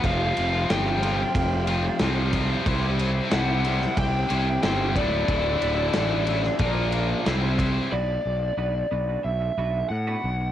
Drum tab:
RD |x-x-x-x-x-x-x-x-|x-x-x-x-x-x-x-x-|x-x-x-x-x-x-x-x-|----------------|
SD |----oo------o---|----o--o----o---|----o--o----o---|----------------|
BD |o-------o-----o-|o-------o-----o-|o-------o-----o-|----------------|